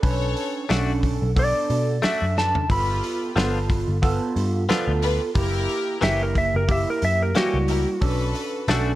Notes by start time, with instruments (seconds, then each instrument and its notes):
0.03 picked electric bass B1, tine electric piano C#4 D4 B4, string section A4 C#5, kick, open hi-hat
0.37 open hi-hat
0.69 picked electric bass B1, clean electric guitar A3 D4 F#4, tine electric piano C#4 D4 A4, snare, open hi-hat
1.03 kick, open hi-hat
1.22 picked electric bass B1
1.36 tine electric piano B3 D4 A4, electric slide guitar D5, kick, open hi-hat
1.70 picked electric bass B2, open hi-hat
2.02 clean electric guitar A3 D4 F#4, tine electric piano C#4 D4 A4, electric slide guitar E5, muted picked electric bass stroke, snare, open hi-hat
2.22 picked electric bass F#2
2.37 string section D4 A4 B4, electric slide guitar A5, snare
2.55 floor tom
2.69 picked electric bass G1, tine electric piano B3 F4 A4, string section F4 G4 B4, electric slide guitar B5, kick, open hi-hat
3.04 open hi-hat
3.35 picked electric bass G1, clean electric guitar F3 B3 D4 F4, tine electric piano B3 F4 A4, snare, open hi-hat
3.70 kick, open hi-hat
3.88 picked electric bass G1
4.02 tine electric piano B3 F4 A4, kick, open hi-hat
4.36 picked electric bass G2, open hi-hat
4.68 clean electric guitar F3 B3 D4 F4, tine electric piano B3 F4 A4, muted picked electric bass stroke, snare, open hi-hat
4.88 picked electric bass D2
5.02 string section F4 G4 B4, open hi-hat
5.35 picked electric bass F#1, tine electric piano A#3 E4 G4, string section E4 G4 A#4, kick, open hi-hat
5.69 open hi-hat
6.01 picked electric bass F#1, clean electric guitar E3 A#3 C#4 G4, tine electric piano A#3 E4 G4, electric slide guitar E5, snare, open hi-hat
6.23 electric slide guitar A#4
6.35 electric slide guitar E5, kick, open hi-hat
6.54 picked electric bass F#1, electric slide guitar A#4
6.68 tine electric piano A#3 E4 G4, electric slide guitar E5, kick, open hi-hat
6.90 electric slide guitar A#4
7.02 picked electric bass F#2, electric slide guitar E5, open hi-hat
7.22 electric slide guitar A#4
7.35 clean electric guitar E3 A#3 C#4 G4, tine electric piano G3 A#3 E4, electric slide guitar F#4, muted picked electric bass stroke, snare, open hi-hat
7.54 picked electric bass C#2
7.68 string section E4 G4 A#4, open hi-hat
8.01 picked electric bass B1, tine electric piano C#4 D4 A4, string section A4 B4, kick, open hi-hat
8.35 open hi-hat
8.68 picked electric bass B1, clean electric guitar A3 D4 F#4, tine electric piano C#4 D4 A4, snare, open hi-hat